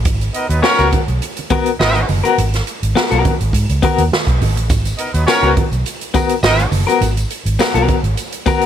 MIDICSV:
0, 0, Header, 1, 5, 480
1, 0, Start_track
1, 0, Key_signature, 5, "minor"
1, 0, Tempo, 580271
1, 46, Time_signature, 4, 2, 24, 8
1, 7163, End_track
2, 0, Start_track
2, 0, Title_t, "Clean electric guitar"
2, 0, Program_c, 0, 27
2, 521, Note_on_c, 0, 59, 67
2, 532, Note_on_c, 0, 66, 58
2, 537, Note_on_c, 0, 70, 78
2, 641, Note_off_c, 0, 70, 0
2, 650, Note_off_c, 0, 66, 0
2, 651, Note_off_c, 0, 59, 0
2, 651, Note_on_c, 0, 70, 80
2, 660, Note_on_c, 0, 66, 84
2, 666, Note_on_c, 0, 59, 67
2, 801, Note_off_c, 0, 70, 0
2, 805, Note_off_c, 0, 66, 0
2, 808, Note_off_c, 0, 59, 0
2, 1244, Note_on_c, 0, 59, 81
2, 1252, Note_on_c, 0, 66, 80
2, 1257, Note_on_c, 0, 70, 83
2, 1404, Note_off_c, 0, 59, 0
2, 1408, Note_off_c, 0, 66, 0
2, 1410, Note_off_c, 0, 70, 0
2, 1850, Note_on_c, 0, 70, 88
2, 1860, Note_on_c, 0, 66, 80
2, 1864, Note_on_c, 0, 59, 72
2, 2000, Note_off_c, 0, 70, 0
2, 2005, Note_off_c, 0, 66, 0
2, 2007, Note_off_c, 0, 59, 0
2, 2444, Note_on_c, 0, 59, 64
2, 2453, Note_on_c, 0, 66, 65
2, 2458, Note_on_c, 0, 70, 74
2, 2561, Note_off_c, 0, 70, 0
2, 2569, Note_off_c, 0, 66, 0
2, 2571, Note_on_c, 0, 70, 86
2, 2573, Note_off_c, 0, 59, 0
2, 2579, Note_on_c, 0, 66, 81
2, 2586, Note_on_c, 0, 59, 71
2, 2733, Note_off_c, 0, 70, 0
2, 2737, Note_off_c, 0, 66, 0
2, 2741, Note_off_c, 0, 59, 0
2, 3163, Note_on_c, 0, 59, 81
2, 3173, Note_on_c, 0, 66, 88
2, 3181, Note_on_c, 0, 70, 86
2, 3324, Note_off_c, 0, 59, 0
2, 3329, Note_off_c, 0, 66, 0
2, 3333, Note_off_c, 0, 70, 0
2, 4364, Note_on_c, 0, 59, 58
2, 4370, Note_on_c, 0, 66, 66
2, 4377, Note_on_c, 0, 70, 72
2, 4480, Note_off_c, 0, 70, 0
2, 4489, Note_off_c, 0, 66, 0
2, 4490, Note_on_c, 0, 70, 85
2, 4492, Note_off_c, 0, 59, 0
2, 4499, Note_on_c, 0, 66, 85
2, 4505, Note_on_c, 0, 59, 76
2, 4640, Note_off_c, 0, 70, 0
2, 4644, Note_off_c, 0, 66, 0
2, 4647, Note_off_c, 0, 59, 0
2, 5079, Note_on_c, 0, 59, 88
2, 5086, Note_on_c, 0, 66, 95
2, 5095, Note_on_c, 0, 70, 94
2, 5241, Note_off_c, 0, 59, 0
2, 5245, Note_off_c, 0, 66, 0
2, 5249, Note_off_c, 0, 70, 0
2, 5682, Note_on_c, 0, 70, 72
2, 5692, Note_on_c, 0, 66, 73
2, 5699, Note_on_c, 0, 59, 69
2, 5836, Note_off_c, 0, 70, 0
2, 5840, Note_off_c, 0, 66, 0
2, 5844, Note_off_c, 0, 59, 0
2, 6280, Note_on_c, 0, 59, 55
2, 6290, Note_on_c, 0, 66, 60
2, 6295, Note_on_c, 0, 70, 61
2, 6395, Note_off_c, 0, 70, 0
2, 6402, Note_off_c, 0, 66, 0
2, 6405, Note_on_c, 0, 70, 80
2, 6410, Note_off_c, 0, 59, 0
2, 6412, Note_on_c, 0, 66, 86
2, 6421, Note_on_c, 0, 59, 70
2, 6569, Note_off_c, 0, 70, 0
2, 6573, Note_off_c, 0, 66, 0
2, 6577, Note_off_c, 0, 59, 0
2, 6998, Note_on_c, 0, 59, 82
2, 7005, Note_on_c, 0, 66, 96
2, 7012, Note_on_c, 0, 70, 102
2, 7160, Note_off_c, 0, 59, 0
2, 7163, Note_off_c, 0, 66, 0
2, 7163, Note_off_c, 0, 70, 0
2, 7163, End_track
3, 0, Start_track
3, 0, Title_t, "Horn section"
3, 0, Program_c, 1, 61
3, 282, Note_on_c, 1, 59, 78
3, 282, Note_on_c, 1, 70, 80
3, 284, Note_on_c, 1, 63, 77
3, 284, Note_on_c, 1, 75, 84
3, 386, Note_off_c, 1, 59, 0
3, 386, Note_off_c, 1, 70, 0
3, 387, Note_off_c, 1, 63, 0
3, 387, Note_off_c, 1, 75, 0
3, 408, Note_on_c, 1, 54, 70
3, 408, Note_on_c, 1, 59, 75
3, 408, Note_on_c, 1, 71, 82
3, 411, Note_on_c, 1, 63, 72
3, 500, Note_off_c, 1, 59, 0
3, 500, Note_off_c, 1, 71, 0
3, 501, Note_off_c, 1, 54, 0
3, 503, Note_off_c, 1, 63, 0
3, 519, Note_on_c, 1, 61, 110
3, 519, Note_on_c, 1, 73, 115
3, 520, Note_on_c, 1, 70, 107
3, 714, Note_off_c, 1, 61, 0
3, 714, Note_off_c, 1, 73, 0
3, 715, Note_off_c, 1, 70, 0
3, 1486, Note_on_c, 1, 63, 103
3, 1486, Note_on_c, 1, 75, 112
3, 1488, Note_on_c, 1, 59, 95
3, 1488, Note_on_c, 1, 70, 97
3, 1678, Note_off_c, 1, 63, 0
3, 1678, Note_off_c, 1, 75, 0
3, 1679, Note_off_c, 1, 59, 0
3, 1680, Note_off_c, 1, 70, 0
3, 4115, Note_on_c, 1, 59, 72
3, 4115, Note_on_c, 1, 70, 73
3, 4116, Note_on_c, 1, 63, 70
3, 4116, Note_on_c, 1, 75, 76
3, 4221, Note_off_c, 1, 70, 0
3, 4222, Note_off_c, 1, 59, 0
3, 4222, Note_off_c, 1, 63, 0
3, 4222, Note_off_c, 1, 75, 0
3, 4246, Note_on_c, 1, 59, 67
3, 4246, Note_on_c, 1, 71, 73
3, 4247, Note_on_c, 1, 63, 68
3, 4248, Note_on_c, 1, 54, 68
3, 4339, Note_off_c, 1, 59, 0
3, 4339, Note_off_c, 1, 71, 0
3, 4340, Note_off_c, 1, 63, 0
3, 4341, Note_off_c, 1, 54, 0
3, 4359, Note_on_c, 1, 61, 96
3, 4359, Note_on_c, 1, 73, 110
3, 4362, Note_on_c, 1, 70, 99
3, 4554, Note_off_c, 1, 61, 0
3, 4554, Note_off_c, 1, 73, 0
3, 4556, Note_off_c, 1, 70, 0
3, 5320, Note_on_c, 1, 63, 103
3, 5320, Note_on_c, 1, 70, 102
3, 5320, Note_on_c, 1, 75, 112
3, 5321, Note_on_c, 1, 59, 95
3, 5515, Note_off_c, 1, 59, 0
3, 5515, Note_off_c, 1, 63, 0
3, 5515, Note_off_c, 1, 70, 0
3, 5515, Note_off_c, 1, 75, 0
3, 7163, End_track
4, 0, Start_track
4, 0, Title_t, "Fingered electric bass"
4, 0, Program_c, 2, 33
4, 47, Note_on_c, 2, 32, 106
4, 228, Note_off_c, 2, 32, 0
4, 409, Note_on_c, 2, 39, 86
4, 496, Note_off_c, 2, 39, 0
4, 653, Note_on_c, 2, 37, 90
4, 738, Note_off_c, 2, 37, 0
4, 894, Note_on_c, 2, 35, 77
4, 979, Note_off_c, 2, 35, 0
4, 1488, Note_on_c, 2, 32, 90
4, 1669, Note_off_c, 2, 32, 0
4, 1730, Note_on_c, 2, 30, 93
4, 1825, Note_off_c, 2, 30, 0
4, 1968, Note_on_c, 2, 32, 99
4, 2149, Note_off_c, 2, 32, 0
4, 2337, Note_on_c, 2, 32, 80
4, 2421, Note_off_c, 2, 32, 0
4, 2578, Note_on_c, 2, 35, 94
4, 2662, Note_off_c, 2, 35, 0
4, 2814, Note_on_c, 2, 32, 86
4, 2899, Note_off_c, 2, 32, 0
4, 2922, Note_on_c, 2, 44, 94
4, 3020, Note_off_c, 2, 44, 0
4, 3056, Note_on_c, 2, 37, 79
4, 3141, Note_off_c, 2, 37, 0
4, 3295, Note_on_c, 2, 39, 96
4, 3380, Note_off_c, 2, 39, 0
4, 3533, Note_on_c, 2, 35, 72
4, 3619, Note_off_c, 2, 35, 0
4, 3645, Note_on_c, 2, 32, 86
4, 3775, Note_off_c, 2, 32, 0
4, 3775, Note_on_c, 2, 33, 81
4, 3888, Note_off_c, 2, 33, 0
4, 3888, Note_on_c, 2, 32, 92
4, 4068, Note_off_c, 2, 32, 0
4, 4254, Note_on_c, 2, 39, 87
4, 4339, Note_off_c, 2, 39, 0
4, 4489, Note_on_c, 2, 37, 99
4, 4576, Note_off_c, 2, 37, 0
4, 4730, Note_on_c, 2, 35, 83
4, 4816, Note_off_c, 2, 35, 0
4, 5319, Note_on_c, 2, 32, 94
4, 5503, Note_off_c, 2, 32, 0
4, 5555, Note_on_c, 2, 30, 97
4, 5655, Note_off_c, 2, 30, 0
4, 5797, Note_on_c, 2, 32, 104
4, 5981, Note_off_c, 2, 32, 0
4, 6166, Note_on_c, 2, 32, 86
4, 6254, Note_off_c, 2, 32, 0
4, 6406, Note_on_c, 2, 35, 91
4, 6494, Note_off_c, 2, 35, 0
4, 6645, Note_on_c, 2, 32, 79
4, 6733, Note_off_c, 2, 32, 0
4, 7163, End_track
5, 0, Start_track
5, 0, Title_t, "Drums"
5, 42, Note_on_c, 9, 42, 89
5, 46, Note_on_c, 9, 36, 106
5, 48, Note_on_c, 9, 64, 76
5, 125, Note_off_c, 9, 42, 0
5, 129, Note_off_c, 9, 36, 0
5, 130, Note_off_c, 9, 64, 0
5, 175, Note_on_c, 9, 42, 54
5, 258, Note_off_c, 9, 42, 0
5, 284, Note_on_c, 9, 42, 68
5, 367, Note_off_c, 9, 42, 0
5, 416, Note_on_c, 9, 42, 59
5, 498, Note_off_c, 9, 42, 0
5, 525, Note_on_c, 9, 62, 33
5, 528, Note_on_c, 9, 38, 123
5, 607, Note_off_c, 9, 62, 0
5, 611, Note_off_c, 9, 38, 0
5, 652, Note_on_c, 9, 42, 50
5, 662, Note_on_c, 9, 62, 36
5, 734, Note_off_c, 9, 42, 0
5, 745, Note_off_c, 9, 62, 0
5, 765, Note_on_c, 9, 42, 74
5, 767, Note_on_c, 9, 36, 92
5, 773, Note_on_c, 9, 63, 83
5, 773, Note_on_c, 9, 64, 80
5, 847, Note_off_c, 9, 42, 0
5, 850, Note_off_c, 9, 36, 0
5, 856, Note_off_c, 9, 63, 0
5, 856, Note_off_c, 9, 64, 0
5, 894, Note_on_c, 9, 42, 43
5, 977, Note_off_c, 9, 42, 0
5, 1009, Note_on_c, 9, 42, 81
5, 1020, Note_on_c, 9, 62, 34
5, 1091, Note_off_c, 9, 42, 0
5, 1102, Note_off_c, 9, 62, 0
5, 1130, Note_on_c, 9, 42, 60
5, 1149, Note_on_c, 9, 62, 38
5, 1213, Note_off_c, 9, 42, 0
5, 1232, Note_off_c, 9, 62, 0
5, 1241, Note_on_c, 9, 42, 67
5, 1246, Note_on_c, 9, 36, 88
5, 1256, Note_on_c, 9, 63, 78
5, 1324, Note_off_c, 9, 42, 0
5, 1329, Note_off_c, 9, 36, 0
5, 1338, Note_off_c, 9, 63, 0
5, 1372, Note_on_c, 9, 42, 62
5, 1454, Note_off_c, 9, 42, 0
5, 1489, Note_on_c, 9, 63, 77
5, 1495, Note_on_c, 9, 38, 120
5, 1571, Note_off_c, 9, 63, 0
5, 1578, Note_off_c, 9, 38, 0
5, 1617, Note_on_c, 9, 42, 54
5, 1618, Note_on_c, 9, 62, 42
5, 1699, Note_off_c, 9, 42, 0
5, 1701, Note_off_c, 9, 62, 0
5, 1724, Note_on_c, 9, 46, 60
5, 1731, Note_on_c, 9, 63, 69
5, 1807, Note_off_c, 9, 46, 0
5, 1814, Note_off_c, 9, 63, 0
5, 1860, Note_on_c, 9, 42, 57
5, 1943, Note_off_c, 9, 42, 0
5, 1972, Note_on_c, 9, 42, 78
5, 1974, Note_on_c, 9, 62, 34
5, 1974, Note_on_c, 9, 64, 77
5, 2054, Note_off_c, 9, 42, 0
5, 2057, Note_off_c, 9, 62, 0
5, 2057, Note_off_c, 9, 64, 0
5, 2099, Note_on_c, 9, 42, 55
5, 2102, Note_on_c, 9, 38, 35
5, 2103, Note_on_c, 9, 62, 30
5, 2181, Note_off_c, 9, 42, 0
5, 2185, Note_off_c, 9, 38, 0
5, 2186, Note_off_c, 9, 62, 0
5, 2208, Note_on_c, 9, 42, 70
5, 2291, Note_off_c, 9, 42, 0
5, 2341, Note_on_c, 9, 42, 61
5, 2424, Note_off_c, 9, 42, 0
5, 2449, Note_on_c, 9, 62, 36
5, 2455, Note_on_c, 9, 38, 121
5, 2532, Note_off_c, 9, 62, 0
5, 2538, Note_off_c, 9, 38, 0
5, 2575, Note_on_c, 9, 42, 48
5, 2578, Note_on_c, 9, 62, 35
5, 2657, Note_off_c, 9, 42, 0
5, 2661, Note_off_c, 9, 62, 0
5, 2688, Note_on_c, 9, 42, 61
5, 2690, Note_on_c, 9, 36, 93
5, 2692, Note_on_c, 9, 63, 87
5, 2692, Note_on_c, 9, 64, 85
5, 2771, Note_off_c, 9, 42, 0
5, 2772, Note_off_c, 9, 36, 0
5, 2775, Note_off_c, 9, 63, 0
5, 2775, Note_off_c, 9, 64, 0
5, 2817, Note_on_c, 9, 42, 50
5, 2900, Note_off_c, 9, 42, 0
5, 2922, Note_on_c, 9, 36, 81
5, 2930, Note_on_c, 9, 42, 87
5, 3004, Note_off_c, 9, 36, 0
5, 3013, Note_off_c, 9, 42, 0
5, 3056, Note_on_c, 9, 42, 55
5, 3074, Note_on_c, 9, 62, 32
5, 3139, Note_off_c, 9, 42, 0
5, 3157, Note_off_c, 9, 62, 0
5, 3166, Note_on_c, 9, 42, 67
5, 3168, Note_on_c, 9, 36, 101
5, 3180, Note_on_c, 9, 63, 82
5, 3248, Note_off_c, 9, 42, 0
5, 3251, Note_off_c, 9, 36, 0
5, 3263, Note_off_c, 9, 63, 0
5, 3295, Note_on_c, 9, 42, 64
5, 3377, Note_off_c, 9, 42, 0
5, 3409, Note_on_c, 9, 63, 66
5, 3419, Note_on_c, 9, 38, 109
5, 3492, Note_off_c, 9, 63, 0
5, 3502, Note_off_c, 9, 38, 0
5, 3532, Note_on_c, 9, 36, 89
5, 3539, Note_on_c, 9, 42, 50
5, 3615, Note_off_c, 9, 36, 0
5, 3622, Note_off_c, 9, 42, 0
5, 3652, Note_on_c, 9, 46, 62
5, 3654, Note_on_c, 9, 63, 60
5, 3654, Note_on_c, 9, 64, 62
5, 3735, Note_off_c, 9, 46, 0
5, 3737, Note_off_c, 9, 63, 0
5, 3737, Note_off_c, 9, 64, 0
5, 3782, Note_on_c, 9, 42, 57
5, 3864, Note_off_c, 9, 42, 0
5, 3883, Note_on_c, 9, 54, 56
5, 3887, Note_on_c, 9, 42, 77
5, 3888, Note_on_c, 9, 36, 111
5, 3893, Note_on_c, 9, 62, 33
5, 3893, Note_on_c, 9, 64, 80
5, 3965, Note_off_c, 9, 54, 0
5, 3970, Note_off_c, 9, 36, 0
5, 3970, Note_off_c, 9, 42, 0
5, 3976, Note_off_c, 9, 62, 0
5, 3976, Note_off_c, 9, 64, 0
5, 4014, Note_on_c, 9, 42, 54
5, 4019, Note_on_c, 9, 62, 30
5, 4025, Note_on_c, 9, 54, 63
5, 4096, Note_off_c, 9, 42, 0
5, 4102, Note_off_c, 9, 62, 0
5, 4107, Note_off_c, 9, 54, 0
5, 4123, Note_on_c, 9, 42, 75
5, 4206, Note_off_c, 9, 42, 0
5, 4253, Note_on_c, 9, 54, 30
5, 4255, Note_on_c, 9, 42, 59
5, 4336, Note_off_c, 9, 54, 0
5, 4338, Note_off_c, 9, 42, 0
5, 4366, Note_on_c, 9, 62, 35
5, 4367, Note_on_c, 9, 38, 127
5, 4369, Note_on_c, 9, 54, 87
5, 4449, Note_off_c, 9, 62, 0
5, 4450, Note_off_c, 9, 38, 0
5, 4451, Note_off_c, 9, 54, 0
5, 4491, Note_on_c, 9, 42, 48
5, 4500, Note_on_c, 9, 62, 31
5, 4574, Note_off_c, 9, 42, 0
5, 4582, Note_off_c, 9, 62, 0
5, 4606, Note_on_c, 9, 42, 69
5, 4607, Note_on_c, 9, 36, 94
5, 4610, Note_on_c, 9, 63, 83
5, 4610, Note_on_c, 9, 64, 85
5, 4689, Note_off_c, 9, 42, 0
5, 4690, Note_off_c, 9, 36, 0
5, 4693, Note_off_c, 9, 63, 0
5, 4693, Note_off_c, 9, 64, 0
5, 4727, Note_on_c, 9, 54, 29
5, 4736, Note_on_c, 9, 42, 44
5, 4810, Note_off_c, 9, 54, 0
5, 4818, Note_off_c, 9, 42, 0
5, 4844, Note_on_c, 9, 54, 56
5, 4847, Note_on_c, 9, 42, 86
5, 4926, Note_off_c, 9, 54, 0
5, 4930, Note_off_c, 9, 42, 0
5, 4973, Note_on_c, 9, 42, 52
5, 5056, Note_off_c, 9, 42, 0
5, 5081, Note_on_c, 9, 42, 67
5, 5083, Note_on_c, 9, 36, 98
5, 5089, Note_on_c, 9, 63, 80
5, 5090, Note_on_c, 9, 54, 52
5, 5164, Note_off_c, 9, 42, 0
5, 5166, Note_off_c, 9, 36, 0
5, 5171, Note_off_c, 9, 63, 0
5, 5173, Note_off_c, 9, 54, 0
5, 5206, Note_on_c, 9, 42, 69
5, 5206, Note_on_c, 9, 54, 42
5, 5288, Note_off_c, 9, 42, 0
5, 5289, Note_off_c, 9, 54, 0
5, 5320, Note_on_c, 9, 63, 68
5, 5322, Note_on_c, 9, 54, 87
5, 5328, Note_on_c, 9, 38, 114
5, 5403, Note_off_c, 9, 63, 0
5, 5405, Note_off_c, 9, 54, 0
5, 5411, Note_off_c, 9, 38, 0
5, 5449, Note_on_c, 9, 54, 54
5, 5454, Note_on_c, 9, 42, 50
5, 5532, Note_off_c, 9, 54, 0
5, 5537, Note_off_c, 9, 42, 0
5, 5557, Note_on_c, 9, 63, 63
5, 5558, Note_on_c, 9, 54, 57
5, 5565, Note_on_c, 9, 46, 65
5, 5640, Note_off_c, 9, 54, 0
5, 5640, Note_off_c, 9, 63, 0
5, 5648, Note_off_c, 9, 46, 0
5, 5693, Note_on_c, 9, 54, 34
5, 5702, Note_on_c, 9, 42, 60
5, 5776, Note_off_c, 9, 54, 0
5, 5785, Note_off_c, 9, 42, 0
5, 5803, Note_on_c, 9, 42, 82
5, 5803, Note_on_c, 9, 62, 35
5, 5803, Note_on_c, 9, 64, 75
5, 5805, Note_on_c, 9, 54, 51
5, 5886, Note_off_c, 9, 42, 0
5, 5886, Note_off_c, 9, 62, 0
5, 5886, Note_off_c, 9, 64, 0
5, 5888, Note_off_c, 9, 54, 0
5, 5927, Note_on_c, 9, 62, 28
5, 5932, Note_on_c, 9, 42, 53
5, 5936, Note_on_c, 9, 54, 56
5, 6010, Note_off_c, 9, 62, 0
5, 6014, Note_off_c, 9, 42, 0
5, 6019, Note_off_c, 9, 54, 0
5, 6042, Note_on_c, 9, 42, 80
5, 6125, Note_off_c, 9, 42, 0
5, 6173, Note_on_c, 9, 42, 58
5, 6255, Note_off_c, 9, 42, 0
5, 6281, Note_on_c, 9, 54, 87
5, 6291, Note_on_c, 9, 38, 114
5, 6364, Note_off_c, 9, 54, 0
5, 6374, Note_off_c, 9, 38, 0
5, 6412, Note_on_c, 9, 42, 54
5, 6412, Note_on_c, 9, 62, 35
5, 6495, Note_off_c, 9, 42, 0
5, 6495, Note_off_c, 9, 62, 0
5, 6520, Note_on_c, 9, 63, 90
5, 6520, Note_on_c, 9, 64, 80
5, 6522, Note_on_c, 9, 42, 70
5, 6524, Note_on_c, 9, 36, 89
5, 6602, Note_off_c, 9, 63, 0
5, 6602, Note_off_c, 9, 64, 0
5, 6605, Note_off_c, 9, 42, 0
5, 6607, Note_off_c, 9, 36, 0
5, 6651, Note_on_c, 9, 42, 47
5, 6733, Note_off_c, 9, 42, 0
5, 6761, Note_on_c, 9, 42, 76
5, 6761, Note_on_c, 9, 54, 54
5, 6843, Note_off_c, 9, 42, 0
5, 6844, Note_off_c, 9, 54, 0
5, 6886, Note_on_c, 9, 42, 56
5, 6968, Note_off_c, 9, 42, 0
5, 6999, Note_on_c, 9, 42, 62
5, 7002, Note_on_c, 9, 36, 96
5, 7006, Note_on_c, 9, 63, 76
5, 7010, Note_on_c, 9, 54, 52
5, 7082, Note_off_c, 9, 42, 0
5, 7084, Note_off_c, 9, 36, 0
5, 7089, Note_off_c, 9, 63, 0
5, 7093, Note_off_c, 9, 54, 0
5, 7126, Note_on_c, 9, 42, 58
5, 7163, Note_off_c, 9, 42, 0
5, 7163, End_track
0, 0, End_of_file